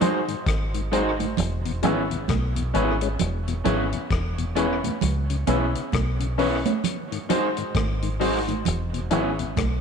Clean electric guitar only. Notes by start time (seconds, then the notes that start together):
0.01 G#3 D#4 F#4 C5
0.92 G#3 D#4 F#4 C5
1.83 B3 E4 G#4 C#5
2.74 B3 E4 G#4 C#5
3.64 B3 E4 G#4 C#5
4.55 B3 E4 G#4 C#5
5.47 B3 E4 G#4 C#5
6.38 B3 E4 G#4 C#5
7.29 G#3 D#4 F#4 C5
8.20 G#3 D#4 F#4 C5
9.11 B3 E4 G#4 C#5